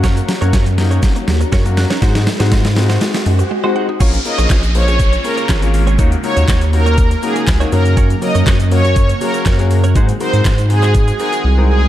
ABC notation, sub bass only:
X:1
M:4/4
L:1/16
Q:1/4=121
K:Bbm
V:1 name="Sub bass" clef=bass
G,,3 G,,6- G,, E,,2 G,,4 | A,,3 A,,6- A,, G,,2 z4 | B,,,2 z B,,, B,,,8 A,,,4 | E,,2 z E,, E,,8 D,,2 G,,2- |
G,,3 G,, G,,8 G,,4 | A,,2 z A,, A,,8 C,,4 |]